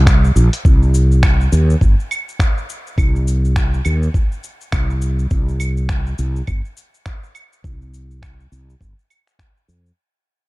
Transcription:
0.00 0.30 C2 loud
0.07 finger snap loud
0.07 kick loud
0.07 closed hi-hat soft
0.07 shaker soft
0.24 shaker soft
0.36 0.48 A#1 loud
0.36 shaker medium
0.53 closed hi-hat medium
0.53 shaker soft
0.65 1.47 C2 medium
0.65 kick loud
0.65 shaker soft
0.83 shaker soft
0.94 shaker medium
1.12 shaker soft
1.23 finger snap loud
1.23 kick medium
1.23 claves medium
1.23 shaker soft
1.41 shaker soft
1.52 1.74 D#2 medium
1.52 shaker medium
1.70 shaker soft
1.81 1.93 G1 medium
1.81 kick loud
1.81 shaker soft
2.00 shaker soft
2.11 claves medium
2.11 shaker medium
2.29 shaker soft
2.40 finger snap loud
2.40 kick loud
2.40 shaker soft
2.58 shaker soft
2.69 shaker medium
2.87 shaker soft
2.98 3.80 C2 medium
2.98 kick loud
2.98 claves medium
2.98 shaker soft
3.16 shaker soft
3.28 shaker medium
3.45 shaker soft
3.56 finger snap loud
3.56 kick loud
3.56 shaker soft
3.74 shaker soft
3.85 4.07 D#2 medium
3.85 claves medium
3.85 shaker medium
4.03 shaker soft
4.14 kick loud
4.14 shaker soft
4.32 shaker soft
4.43 shaker medium
4.61 shaker soft
4.72 5.25 C2 medium
4.72 finger snap loud
4.72 kick loud
4.72 claves medium
4.72 shaker soft
4.90 shaker soft
5.02 shaker medium
5.19 shaker soft
5.31 6.13 C2 medium
5.31 kick loud
5.31 shaker soft
5.48 shaker soft
5.60 claves medium
5.60 shaker medium
5.77 shaker soft
5.89 finger snap medium
5.89 kick loud
5.89 shaker soft
6.07 shaker soft
6.18 6.40 C2 medium
6.18 shaker medium
6.36 shaker soft
6.47 6.60 G1 medium
6.47 kick loud
6.47 claves medium
6.47 shaker soft
6.65 shaker soft
6.77 shaker medium
6.94 shaker soft
7.06 finger snap loud
7.06 kick loud
7.06 shaker soft
7.23 shaker soft
7.35 claves medium
7.35 shaker medium
7.53 shaker soft
7.64 8.46 C2 medium
7.64 kick loud
7.64 shaker soft
7.82 shaker soft
7.94 shaker medium
8.11 shaker soft
8.22 finger snap medium
8.22 kick loud
8.22 claves medium
8.22 shaker soft
8.40 shaker soft
8.52 8.73 C2 medium
8.52 shaker medium
8.70 shaker soft
8.81 8.92 G1 medium
8.81 kick medium
8.81 shaker soft
8.99 shaker soft
9.10 claves medium
9.10 shaker medium
9.27 finger snap soft
9.27 shaker soft
9.39 finger snap medium
9.39 kick medium
9.39 shaker soft
9.57 shaker soft
9.68 9.90 F2 medium
9.68 shaker medium
9.86 shaker soft

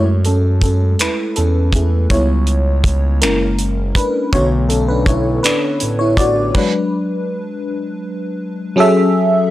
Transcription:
0.00 0.95 F#2 loud
0.00 0.38 G#3 soft
0.00 0.38 A3 soft
0.25 0.61 C#4 soft
0.25 0.62 A4 medium
0.25 closed hi-hat soft
0.61 0.98 C#4 medium
0.61 1.01 A4 medium
0.61 kick medium
0.61 closed hi-hat medium
0.99 1.08 E2 soft
0.99 1.35 E4 medium
0.99 1.34 B4 medium
0.99 finger snap medium
0.99 closed hi-hat medium
1.36 2.07 E2 medium
1.36 2.07 C#4 medium
1.36 2.13 A4 medium
1.36 closed hi-hat soft
1.72 2.07 A3 soft
1.72 2.08 E4 soft
1.72 2.07 G#4 soft
1.72 kick medium
1.72 closed hi-hat medium
2.10 3.24 C#2 loud
2.10 3.18 G3 medium
2.10 3.18 B3 soft
2.10 3.18 E4 medium
2.10 3.25 C#5 medium
2.10 kick medium
2.10 closed hi-hat medium
2.47 closed hi-hat medium
2.84 kick medium
2.84 closed hi-hat medium
3.21 3.92 F#1 medium
3.21 3.71 G#3 medium
3.21 3.71 A#3 soft
3.21 3.92 C#4 medium
3.21 3.71 E4 medium
3.21 3.98 A#4 medium
3.21 finger snap medium
3.21 closed hi-hat medium
3.58 closed hi-hat soft
3.95 4.31 D4 medium
3.95 4.34 B4 medium
3.95 kick medium
3.95 closed hi-hat medium
4.33 5.40 B1 loud
4.33 6.51 D3 medium
4.33 6.51 A3 soft
4.33 6.52 B3 medium
4.33 4.49 F#4 medium
4.33 4.47 C#5 loud
4.33 kick loud
4.33 closed hi-hat medium
4.69 4.88 C#4 medium
4.69 4.88 A4 medium
4.69 closed hi-hat medium
4.88 4.98 D4 medium
4.88 4.97 B4 medium
5.06 5.23 E4 medium
5.06 5.20 C#5 medium
5.06 kick medium
5.06 closed hi-hat medium
5.43 5.52 A1 soft
5.43 5.96 D4 medium
5.43 6.01 B4 loud
5.43 finger snap loud
5.43 closed hi-hat medium
5.80 6.52 A1 medium
5.80 closed hi-hat medium
5.99 6.17 E4 medium
5.99 6.18 C#5 loud
6.17 6.53 F#4 medium
6.17 6.56 D5 loud
6.17 kick medium
6.17 closed hi-hat medium
6.54 7.04 F#3 medium
6.54 7.05 G#3 soft
6.54 8.37 D4 medium
6.54 8.36 B4 medium
6.54 kick medium
6.54 crash medium
8.76 9.51 F#3 loud
8.76 9.51 C#4 medium
8.76 9.51 G#4 loud
8.76 9.51 A4 loud
8.80 9.51 E5 loud

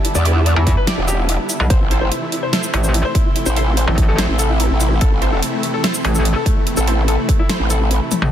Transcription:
0.00 1.66 D3 medium
0.00 1.66 G3 medium
0.00 1.66 B3 medium
0.00 2.38 D4 medium
0.00 1.66 E4 medium
0.00 2.67 G4 medium
0.00 8.32 E5 medium
0.00 2.32 A5 medium
0.05 0.12 E4 medium
0.05 closed hi-hat medium
0.15 0.55 E2 loud
0.15 0.22 D5 loud
0.15 shaker medium
0.25 0.45 E4 medium
0.25 0.32 E4 medium
0.25 0.45 G4 medium
0.25 0.45 D5 medium
0.25 closed hi-hat medium
0.36 0.43 E4 medium
0.46 0.53 D5 medium
0.46 closed hi-hat medium
0.56 0.75 E2 loud
0.56 0.63 E4 medium
0.67 0.74 E4 medium
0.67 kick medium
0.67 closed hi-hat medium
0.77 0.84 B4 loud
0.87 1.07 E4 loud
0.87 0.94 E4 medium
0.87 1.07 G4 medium
0.87 1.07 D5 loud
0.87 snare loud
0.87 closed hi-hat medium
0.98 1.38 E1 loud
0.98 1.05 E4 medium
1.08 1.15 G4 loud
1.08 closed hi-hat medium
1.08 shaker medium
1.18 1.25 E4 medium
1.29 1.36 E4 medium
1.29 closed hi-hat medium
1.49 1.56 E4 medium
1.49 closed hi-hat medium
1.49 shaker medium
1.60 1.69 B1 loud
1.60 1.67 E4 medium
1.70 2.10 A1 loud
1.70 8.28 C3 medium
1.70 8.28 E3 medium
1.70 8.28 A3 medium
1.70 8.32 C4 medium
1.70 8.28 E4 medium
1.70 1.77 C5 loud
1.70 kick loud
1.70 closed hi-hat medium
1.81 1.87 E4 medium
1.91 2.10 E4 medium
1.91 1.98 E4 medium
1.91 2.10 A4 medium
1.91 2.10 C5 medium
1.91 closed hi-hat medium
2.01 2.08 C5 medium
2.01 6.00 C6 medium
2.12 2.18 E4 medium
2.12 closed hi-hat medium
2.18 8.32 A4 loud
2.22 2.29 E4 medium
2.32 2.39 E4 medium
2.32 closed hi-hat medium
2.43 2.50 C5 medium
2.53 2.72 E4 loud
2.53 2.60 E4 medium
2.53 2.72 A4 medium
2.53 2.72 C5 loud
2.53 snare loud
2.53 closed hi-hat medium
2.63 2.70 E4 medium
2.63 shaker medium
2.74 3.03 A1 medium
2.74 2.81 E4 medium
2.74 closed hi-hat medium
2.84 2.91 C5 medium
2.84 shaker medium
2.94 3.01 E4 medium
2.94 closed hi-hat medium
3.05 3.12 C5 loud
3.15 3.22 E4 medium
3.15 kick medium
3.15 closed hi-hat medium
3.26 3.32 E4 medium
3.36 3.43 E4 medium
3.36 closed hi-hat medium
3.46 3.86 A1 loud
3.46 3.53 C5 medium
3.46 shaker medium
3.56 3.76 E4 medium
3.56 3.63 E4 medium
3.56 3.76 A4 medium
3.56 3.76 C5 medium
3.56 closed hi-hat medium
3.67 3.74 E4 medium
3.77 3.84 C5 medium
3.77 closed hi-hat medium
3.88 4.27 A1 loud
3.88 3.94 E4 medium
3.98 4.05 E4 medium
3.98 kick medium
3.98 closed hi-hat medium
4.08 4.15 A4 medium
4.18 4.38 E4 loud
4.18 4.25 E4 medium
4.18 4.38 A4 medium
4.18 4.38 C5 loud
4.18 snare loud
4.18 closed hi-hat medium
4.29 4.69 A1 loud
4.29 4.36 E4 medium
4.39 4.46 A4 medium
4.39 closed hi-hat medium
4.39 shaker medium
4.49 4.56 E4 medium
4.60 4.67 E4 medium
4.60 closed hi-hat medium
4.70 5.00 A1 loud
4.80 4.87 E4 medium
4.80 closed hi-hat medium
4.80 shaker medium
4.91 4.98 E4 medium
5.01 5.41 A1 loud
5.01 5.08 A4 medium
5.01 kick loud
5.01 closed hi-hat medium
5.11 5.18 A3 medium
5.22 5.29 A3 medium
5.22 5.41 E4 medium
5.22 5.41 A4 medium
5.22 5.41 C5 medium
5.22 closed hi-hat medium
5.32 5.39 A4 medium
5.42 5.49 A3 medium
5.42 closed hi-hat medium
5.53 5.60 A3 medium
5.63 5.70 A3 medium
5.63 closed hi-hat medium
5.74 5.81 A4 loud
5.84 5.91 A3 medium
5.84 6.03 E4 loud
5.84 6.03 A4 medium
5.84 6.03 C5 loud
5.84 8.32 B5 medium
5.84 snare loud
5.84 closed hi-hat medium
5.94 6.01 A3 medium
5.94 shaker medium
6.05 6.34 A1 loud
6.05 6.12 A3 medium
6.05 closed hi-hat medium
6.15 6.22 A4 medium
6.15 shaker medium
6.25 6.32 A3 medium
6.25 closed hi-hat medium
6.36 6.43 A4 loud
6.46 6.53 A3 medium
6.46 kick medium
6.46 closed hi-hat medium
6.57 6.63 A3 medium
6.67 6.74 A3 medium
6.67 closed hi-hat medium
6.77 7.17 A1 loud
6.77 6.84 A4 loud
6.77 shaker medium
6.87 6.94 A3 medium
6.87 7.07 E4 medium
6.87 7.07 A4 medium
6.87 7.07 C5 medium
6.87 closed hi-hat medium
6.98 7.05 A3 medium
7.08 7.15 A4 medium
7.08 closed hi-hat medium
7.19 7.25 A3 medium
7.29 7.36 A3 medium
7.29 kick medium
7.29 closed hi-hat medium
7.39 7.46 E4 loud
7.49 7.56 A3 medium
7.49 7.69 E4 loud
7.49 7.69 A4 medium
7.49 7.69 C5 loud
7.49 snare loud
7.49 closed hi-hat medium
7.60 8.00 A1 loud
7.60 7.67 A3 medium
7.70 7.77 A4 loud
7.70 closed hi-hat medium
7.70 shaker medium
7.81 7.87 A3 medium
7.91 7.98 A3 medium
7.91 closed hi-hat medium
8.12 8.18 A3 medium
8.12 closed hi-hat medium
8.12 high tom medium
8.12 shaker medium
8.22 8.31 A1 loud
8.22 8.29 A3 medium
8.22 mid tom medium

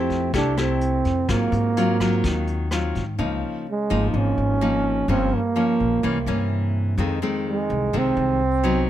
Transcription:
0.00 0.30 F2 medium
0.00 0.32 F3 medium
0.00 0.30 A3 medium
0.00 0.31 C4 medium
0.00 0.30 E4 medium
0.00 0.30 G4 medium
0.10 kick soft
0.10 closed hi-hat soft
0.34 1.01 C2 medium
0.34 1.26 C3 soft
0.34 0.54 A3 medium
0.34 0.60 D4 loud
0.34 0.54 E4 medium
0.34 0.54 G4 medium
0.34 kick medium
0.34 closed hi-hat soft
0.57 1.25 A3 medium
0.57 1.31 C4 medium
0.57 1.25 E4 medium
0.57 1.25 G4 medium
0.57 cross-stick medium
0.57 closed hi-hat soft
0.81 closed hi-hat soft
1.05 1.27 F2 medium
1.05 kick soft
1.05 closed hi-hat soft
1.28 2.21 G#2 soft
1.28 1.51 G#2 medium
1.28 1.72 F#3 soft
1.28 2.72 A#3 loud
1.28 1.73 C4 medium
1.28 1.73 F4 medium
1.28 kick medium
1.28 cross-stick medium
1.28 closed hi-hat soft
1.52 2.19 G#2 loud
1.52 closed hi-hat soft
1.77 1.97 F#3 medium
1.77 1.97 C4 medium
1.77 1.97 F4 medium
1.77 closed hi-hat soft
2.00 2.68 F#3 medium
2.00 2.68 C4 medium
2.00 2.68 F4 medium
2.00 kick soft
2.00 cross-stick medium
2.00 closed hi-hat soft
2.24 2.91 D#2 medium
2.24 3.16 D#3 soft
2.24 kick medium
2.24 closed hi-hat soft
2.47 closed hi-hat soft
2.71 3.03 F#3 medium
2.71 3.04 C4 soft
2.71 3.04 F4 medium
2.71 cross-stick medium
2.71 closed hi-hat soft
2.95 3.17 G#2 medium
2.95 kick soft
2.95 closed hi-hat soft
3.18 3.41 C#2 loud
3.18 4.11 C#3 soft
3.18 3.66 F3 soft
3.18 3.66 A#3 soft
3.18 3.66 D#4 soft
3.71 4.06 G#3 medium
3.90 4.12 G#1 medium
3.90 4.57 F3 medium
3.90 4.57 A#3 medium
3.90 4.58 D#4 medium
4.11 4.36 G#1 medium
4.11 5.06 G#2 medium
4.11 4.18 D#4 medium
4.17 5.09 C#4 loud
4.38 5.05 G#1 medium
4.61 5.05 F3 medium
4.61 5.05 A#3 medium
4.61 5.05 D#4 medium
5.08 5.30 G1 medium
5.08 6.01 G2 medium
5.08 5.39 F3 soft
5.08 5.39 A#3 medium
5.08 5.37 C4 loud
5.08 5.40 C#4 medium
5.35 6.76 A#3 medium
5.56 6.02 F3 medium
5.56 6.01 A#3 medium
5.56 6.02 C#4 medium
5.80 6.02 A#1 medium
6.03 6.25 C2 medium
6.03 6.96 C3 medium
6.03 6.17 E3 medium
6.03 6.18 A#3 medium
6.03 6.18 C#4 medium
6.26 6.94 G2 medium
6.26 6.95 E3 medium
6.26 6.95 A#3 medium
6.26 6.95 C#4 medium
6.98 7.20 F2 loud
6.98 7.91 F2 medium
6.98 7.18 D#3 medium
6.98 7.18 G#3 medium
6.98 7.19 C4 medium
7.22 7.89 D#3 medium
7.22 7.90 G#3 medium
7.22 7.90 C4 medium
7.49 7.99 G#3 medium
7.70 7.92 C2 medium
7.93 8.15 C2 medium
7.93 8.86 C3 medium
7.93 8.41 D#3 soft
7.93 8.41 G#3 medium
7.93 8.41 C4 medium
7.98 8.90 C4 loud
8.17 8.84 C2 medium
8.64 8.90 F#3 medium
8.64 8.90 B3 medium
8.64 8.90 D#4 medium

